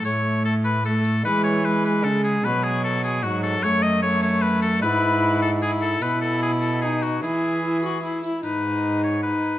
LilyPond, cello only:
\new Staff \with { instrumentName = "Cello" } { \clef bass \time 3/4 \key e \major \tempo 4 = 150 a,2. | e2 cis4 | b,2 gis,4 | fis,2. |
gis,2. | b,2. | e2~ e8 r8 | gis,2. | }